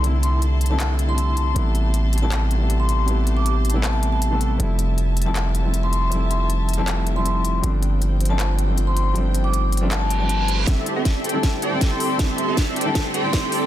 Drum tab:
HH |x---x---x---xx--x---x---x---x---|x---x---x---xx--x---x---x---x---|x---x---x---xx--x---x---x---x---|x---x---x---xx--x---x---x---x---|
CP |----------------x---------------|----------------x---------------|----------------x---------------|----------------x---------------|
SD |--------------------------------|--------------------------------|--------------------------------|--------------------------------|
BD |--------------------------------|--------------------------------|--------------------------------|--------------------------------|

HH |x---x---x---xx--x---x---x---x---|x---x---x---xx--x---x---x---x---|x---x---x---xx--x---x---x---x---|x---x---x---xx--x---x---x---o---|
CP |----------------x---------------|----------------x---------------|----------------x---------------|--------------------------------|
SD |--------------------------------|--------------------------------|--------------------------------|o-------o-------o-------o-------|
BD |--------------------------------|--------------------------------|--------------------------------|o-------o-------o-------o-------|

HH |x---x---x---xx--x---x---x---o---|
CP |--------------------------------|
SD |o-------o-------o-------o-------|
BD |o-------o-------o-------o-------|